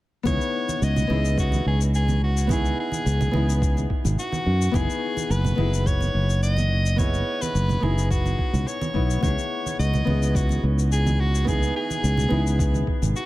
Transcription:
0.23 fretless electric bass C#2, nylon-string guitar B3 D#4 E4, soprano saxophone C#5, kick, high conga, shaker
0.29 nylon-string guitar G#4
0.41 shaker
0.69 high conga, shaker
0.82 fretless electric bass C#2, soprano saxophone D#5, shaker
0.96 low conga, shaker
1.07 fretless electric bass C#2, nylon-string guitar B3 D#4 E4, high conga
1.13 nylon-string guitar G#4
1.25 shaker
1.38 soprano saxophone F#4, kick, shaker
1.52 high conga, shaker
1.66 fretless electric bass C#2, soprano saxophone G#4
1.81 shaker
1.94 soprano saxophone G#4, shaker
2.08 high conga, shaker
2.24 soprano saxophone F#4
2.37 shaker
2.47 nylon-string guitar B3 D#4 E4, kick, high conga, shaker
2.52 soprano saxophone G#4, nylon-string guitar G#4
2.65 shaker
2.80 soprano saxophone G#4
2.92 high conga, shaker
3.06 fretless electric bass C#2, shaker
3.21 low conga, shaker
3.31 fretless electric bass C#2, nylon-string guitar B3 D#4 E4, high conga
3.37 nylon-string guitar G#4
3.49 shaker
3.62 kick, shaker
3.77 high conga, shaker
3.90 kick
4.05 fretless electric bass G#1, low conga, shaker
4.19 soprano saxophone F#4, shaker
4.32 high conga, shaker
4.46 fretless electric bass F#2
4.61 shaker
4.71 fretless electric bass F#1, nylon-string guitar B3 D#4 E4, soprano saxophone G#4, kick, high conga, shaker
4.77 nylon-string guitar G#4
4.90 shaker
5.17 high conga, shaker
5.30 fretless electric bass F#1, soprano saxophone B4, shaker
5.45 low conga, shaker
5.55 fretless electric bass F#1, nylon-string guitar B3 D#4 E4, high conga
5.61 nylon-string guitar G#4
5.74 shaker
5.86 soprano saxophone C#5, kick, shaker
6.01 high conga, shaker
6.14 fretless electric bass F#1
6.30 shaker
6.43 soprano saxophone D#5, shaker
6.57 high conga, shaker
6.86 shaker
6.96 nylon-string guitar B3 D#4 E4, soprano saxophone C#5, kick, high conga, shaker
7.02 nylon-string guitar G#4
7.14 shaker
7.41 soprano saxophone B4, high conga, shaker
7.55 fretless electric bass F#1, shaker
7.69 low conga, shaker
7.80 fretless electric bass F#1, nylon-string guitar B3 D#4 E4, soprano saxophone G#4, high conga
7.86 nylon-string guitar G#4
7.98 shaker
8.11 soprano saxophone F#4, kick, shaker
8.26 high conga, shaker
8.39 kick
8.53 fretless electric bass C#2, low conga, shaker
8.67 soprano saxophone C#5, shaker
8.81 high conga, shaker
8.94 fretless electric bass B1, nylon-string guitar B3 D#4 E4 F#4, kick
9.10 shaker
9.21 fretless electric bass C#2, nylon-string guitar B3 D#4 E4, soprano saxophone C#5, kick, high conga, shaker
9.26 nylon-string guitar G#4
9.38 shaker
9.66 high conga, shaker
9.79 fretless electric bass C#2, soprano saxophone D#5, shaker
9.94 low conga, shaker
10.05 fretless electric bass C#2, nylon-string guitar B3 D#4 E4, high conga
10.10 nylon-string guitar G#4
10.22 shaker
10.35 soprano saxophone F#4, kick, shaker
10.49 high conga, shaker
10.63 fretless electric bass C#2
10.79 shaker
10.92 soprano saxophone G#4, shaker
11.06 high conga, shaker
11.20 soprano saxophone F#4
11.35 shaker
11.45 nylon-string guitar B3 D#4 E4, soprano saxophone G#4, kick, high conga, shaker
11.50 nylon-string guitar G#4
11.63 shaker
11.76 soprano saxophone G#4
11.90 high conga, shaker
12.04 fretless electric bass C#2, shaker
12.17 low conga, shaker
12.28 fretless electric bass C#2, nylon-string guitar B3 D#4 E4, high conga
12.34 nylon-string guitar G#4
12.47 shaker
12.59 kick, shaker
12.74 high conga, shaker
12.87 kick
13.02 fretless electric bass G#1, low conga, shaker
13.16 soprano saxophone F#4, shaker

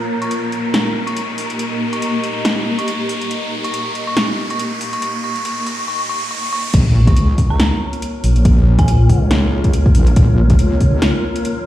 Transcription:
Already playing: ambient pad A#3 G4 D#5, synth texture A#4, riser
0.22 synth bell C#6, closed hi-hat
0.31 closed hi-hat
0.52 closed hi-hat
0.74 snare, closed hi-hat
1.07 synth bell C#6, closed hi-hat
1.17 closed hi-hat
1.38 open hi-hat
1.50 closed hi-hat
1.59 closed hi-hat
1.93 synth bell C#6, closed hi-hat
2.02 closed hi-hat
2.24 closed hi-hat
2.45 snare, closed hi-hat
2.79 synth bell C#6, closed hi-hat
2.88 closed hi-hat
3.09 open hi-hat
3.21 closed hi-hat
3.31 closed hi-hat
3.64 synth bell C#6, closed hi-hat
3.74 closed hi-hat
3.95 closed hi-hat
4.07 synth bell C#6
4.17 snare, closed hi-hat
4.50 synth bell C#6, closed hi-hat
4.59 closed hi-hat
4.81 open hi-hat
4.93 synth bell C#6, closed hi-hat
5.02 synth bell C#6, closed hi-hat
5.24 synth bell C#6
5.36 closed hi-hat
5.45 synth bell C#6, closed hi-hat
5.66 synth bell C#6, open hi-hat
5.88 synth bell C#6
6.09 synth bell C#6
6.31 synth bell C#6
6.53 synth bell C#6
6.74 wobble bass A#1, ambient pad A#3 F4 C#5, synth texture A#4, kick, closed hi-hat, crash
7.07 synth bell C#6, kick, closed hi-hat
7.16 wobble bass C#2, closed hi-hat
7.38 kick, open hi-hat
7.50 synth bell A#5
7.60 snare, closed hi-hat
7.93 closed hi-hat
8.02 closed hi-hat
8.24 wobble bass A#1, open hi-hat
8.36 closed hi-hat
8.45 kick, closed hi-hat
8.79 synth bell G#5, kick, closed hi-hat
8.88 closed hi-hat
9.09 wobble bass C#2, kick, open hi-hat
9.31 snare, closed hi-hat
9.64 kick, closed hi-hat
9.73 closed hi-hat
9.86 kick
9.95 wobble bass A#1, open hi-hat
10.07 closed hi-hat
10.16 wobble bass A#1, kick, closed hi-hat
10.50 kick, closed hi-hat
10.59 wobble bass C#2, closed hi-hat
10.80 kick, open hi-hat
11.02 snare, closed hi-hat
11.36 closed hi-hat
11.45 closed hi-hat

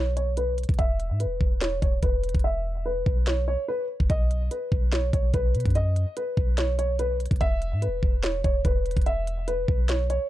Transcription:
Already playing: 808-style bass B1, grand piano C#5
0.17 grand piano C#5, closed hi-hat
0.37 grand piano B4, closed hi-hat
0.58 closed hi-hat
0.64 closed hi-hat
0.69 808-style bass B1, kick, closed hi-hat
0.74 closed hi-hat
0.79 808-style bass E1, grand piano E5, kick, closed hi-hat
1.00 closed hi-hat
1.10 808-style bass G#2
1.20 grand piano B4, closed hi-hat
1.25 808-style bass E1
1.41 808-style bass E1, kick
1.61 grand piano C#5, snare, closed hi-hat
1.82 808-style bass D#1, grand piano C#5, kick, closed hi-hat
2.03 808-style bass E1, grand piano B4, kick, closed hi-hat
2.24 closed hi-hat
2.29 closed hi-hat
2.35 808-style bass E1, kick, closed hi-hat
2.39 closed hi-hat
2.44 grand piano E5
2.86 grand piano B4
3.06 808-style bass B1, kick
3.27 grand piano C#5, snare
3.48 grand piano C#5
3.68 grand piano B4
4.00 808-style bass E1, kick
4.10 808-style bass B1, grand piano D#5, kick, closed hi-hat
4.31 closed hi-hat
4.51 grand piano B4, closed hi-hat
4.72 808-style bass B1, kick
4.92 grand piano C#5, snare, closed hi-hat
5.13 808-style bass B1, grand piano C#5, kick, closed hi-hat
5.34 808-style bass B1, grand piano B4, kick, closed hi-hat
5.55 808-style bass B2, closed hi-hat
5.60 closed hi-hat
5.66 808-style bass F#2, kick, closed hi-hat
5.70 closed hi-hat
5.75 grand piano D#5, closed hi-hat
5.96 closed hi-hat
6.17 grand piano B4, closed hi-hat
6.37 808-style bass B1, kick
6.58 grand piano C#5, snare, closed hi-hat
6.79 grand piano C#5, closed hi-hat
6.99 grand piano B4, closed hi-hat
7.20 closed hi-hat
7.26 closed hi-hat
7.31 808-style bass B1, kick, closed hi-hat
7.36 closed hi-hat
7.41 808-style bass E1, grand piano E5, kick, closed hi-hat
7.62 closed hi-hat
7.72 808-style bass G#2
7.82 grand piano B4, closed hi-hat
7.88 808-style bass E1
8.03 808-style bass E1, kick
8.23 grand piano C#5, snare, closed hi-hat
8.44 808-style bass D#1, grand piano C#5, kick, closed hi-hat
8.65 808-style bass E1, grand piano B4, kick, closed hi-hat
8.86 closed hi-hat
8.91 closed hi-hat
8.97 808-style bass E1, kick, closed hi-hat
9.02 closed hi-hat
9.06 grand piano E5, closed hi-hat
9.27 closed hi-hat
9.48 grand piano B4, closed hi-hat
9.68 808-style bass B1, kick
9.89 grand piano C#5, snare, closed hi-hat
10.10 grand piano C#5, closed hi-hat

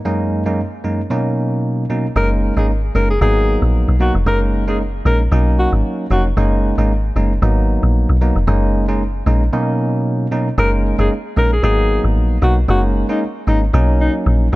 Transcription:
0.05 tine electric piano F#2 G#3 A#3 C#4 D#4
0.46 tine electric piano F#2 G#3 A#3 C#4 D#4
0.84 tine electric piano F#2 G#3 A#3 C#4 D#4
1.10 tine electric piano B2 F#3 A#3 C#4 D#4
1.89 tine electric piano B2 F#3 A#3 C#4 D#4
2.16 log drum bass F#1, tine electric piano G#3 A#3 C#4 D#4, alto saxophone A#4
2.57 log drum bass G#1, tine electric piano G#3 A#3 C#4 D#4, alto saxophone G#4
2.95 log drum bass F#1, tine electric piano G#3 A#3 C#4 D#4, alto saxophone A#4
3.10 alto saxophone G#4
3.21 log drum bass G#1, tine electric piano F#3 A#3 B3 D#4, alto saxophone G#4
3.62 log drum bass A#1
3.88 log drum bass B1
4.00 tine electric piano F#3 A#3 B3 D#4, alto saxophone F#4
4.15 log drum bass F1
4.26 log drum bass F#1, tine electric piano G#3 A#3 C#4 D#4, alto saxophone A#4
4.67 tine electric piano G#3 A#3 C#4 D#4, alto saxophone G#4
5.05 log drum bass A#1, tine electric piano G#3 A#3 C#4 D#4, alto saxophone A#4
5.32 log drum bass B1, tine electric piano F#3 A#3 C#4 D#4
5.59 alto saxophone F#4
5.72 log drum bass G#1
6.11 log drum bass F1, tine electric piano F#3 A#3 C#4 D#4, alto saxophone F#4
6.37 log drum bass F#1, tine electric piano G#3 A#3 C#4 D#4
6.78 log drum bass G#1, tine electric piano G#3 A#3 C#4 D#4
7.16 log drum bass F#1, tine electric piano G#3 A#3 C#4 D#4
7.42 log drum bass G#1, tine electric piano F#3 A#3 B3 D#4
7.83 log drum bass A#1
8.09 log drum bass B1
8.21 tine electric piano F#3 A#3 B3 D#4
8.36 log drum bass F1
8.47 log drum bass F#1, tine electric piano G#3 A#3 C#4 D#4
8.88 tine electric piano G#3 A#3 C#4 D#4
9.26 log drum bass A#1, tine electric piano G#3 A#3 C#4 D#4
9.53 tine electric piano B2 F#3 A#3 C#4 D#4
10.31 tine electric piano B2 F#3 A#3 C#4 D#4
10.58 log drum bass F#1, tine electric piano G#3 A#3 C#4 D#4, alto saxophone A#4
10.98 log drum bass F#1, tine electric piano G#3 A#3 C#4 D#4, alto saxophone G#4
11.37 log drum bass A#1, tine electric piano G#3 A#3 C#4 D#4, alto saxophone A#4
11.53 alto saxophone G#4
11.63 log drum bass G#1, tine electric piano F#3 A#3 B3 D#4, alto saxophone G#4
12.04 log drum bass G#1
12.16 log drum bass A#1
12.42 log drum bass B1, tine electric piano F#3 A#3 B3 D#4, alto saxophone F#4
12.68 log drum bass F#1, tine electric piano G#3 A#3 C#4 D#4, alto saxophone F#4
13.09 tine electric piano G#3 A#3 C#4 D#4, alto saxophone D#4
13.47 log drum bass G#1, tine electric piano G#3 A#3 C#4 D#4, alto saxophone D#4
13.73 log drum bass B1, tine electric piano F#3 A#3 C#4 D#4
14.01 alto saxophone D#4
14.26 log drum bass A#1

